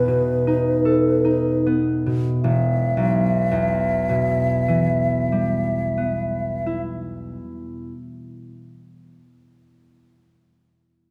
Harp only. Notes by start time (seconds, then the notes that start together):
Already playing: E2 B3 D#4 A4
0.08 B2
0.47 D#4
0.85 A4
1.25 D#4
1.66 B3
2.06 B2
2.44 E1
2.97 B1
3.51 E2
4.09 B2
4.68 E3
5.32 G3
5.98 B3
6.66 E4